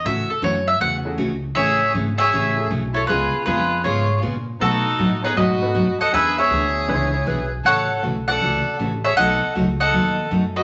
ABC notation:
X:1
M:4/4
L:1/16
Q:"Swing" 1/4=158
K:A
V:1 name="Mandolin"
e2 A2 c2 e2 f2 z6 | [ce]4 z2 [ce]6 z2 [Ac]2 | [GB]4 [GB]4 [Gc]4 z4 | [FA]6 [GB]2 [B^d]6 [df]2 |
[Be]2 [ce]12 z2 | [cf]4 z2 [df]6 z2 [ce]2 | [^df]4 z2 [df]6 z2 [Bd]2 |]
V:2 name="Electric slide guitar"
z16 | z16 | z16 | z16 |
z8 [Ec]2 [Ec]2 B2 z2 | z16 | z16 |]
V:3 name="Fiddle"
z16 | G4 z2 G6 z2 E2 | ^E4 E4 E4 z4 | ^D6 D2 F6 A2 |
G2 G12 z2 | A4 z2 A6 z2 G2 | A4 z2 A6 z2 F2 |]
V:4 name="Upright piano"
[A,CEFA]2 z8 [A,CEFG]2 z4 | [A,CEGA]2 z8 [A,CEGA]2 z4 | [B,C^EGB]4 [B,CEGB]2 z8 z2 | [B,^DFAB]2 z4 [B,DFAc]2 z2 [B,DFAB]2 z4 |
[_B,C^D=G_B]2 [=B,=DE^G=B]8 z6 | z6 [A,CEFA]2 z8 | [A,B,^DFA]2 z12 z2 |]
V:5 name="Steel-string acoustic guitar"
[C,E,A,CF]2 z2 [C,E,A,CF] z3 [C,E,A,CF]2 z2 [C,E,A,CF] z3 | [C,E,A,CG]2 z2 [C,E,A,CG] z3 [C,E,A,CG]2 z2 [C,E,A,CG] z3 | [C,G,B,^EG]2 z2 [C,G,B,EG] z3 [C,G,B,EG]2 z2 [C,G,B,EG] z3 | [B,,F,A,^DF]2 z2 [B,,F,A,DF] z3 [B,,F,A,DF]2 z2 [B,,F,A,DF] z3 |
[E,B,DG]2 z2 [E,B,DG] z3 [E,B,DG]2 z2 [E,B,DG] z3 | [C,E,A,CF]2 z2 [C,E,A,CF] z3 [C,E,A,CF]2 z2 [C,E,A,CF] z3 | [B,,F,A,^DF]2 z2 [B,,F,A,DF] z3 [B,,F,A,DF]2 z2 [B,,F,A,DF] z3 |]
V:6 name="Upright bass" clef=bass
A,,2 z2 F,,4 E,,4 C,,4 | A,,,4 G,,,4 A,,,4 B,,,4 | C,,2 z2 ^E,,4 G,,4 _B,,4 | B,,4 A,,4 G,,4 F,,2 z2 |
E,,4 D,,4 C,,4 B,,,4 | A,,,4 B,,,4 C,,2 z2 A,,,4 | B,,,2 z2 C,,4 ^D,,4 F,,4 |]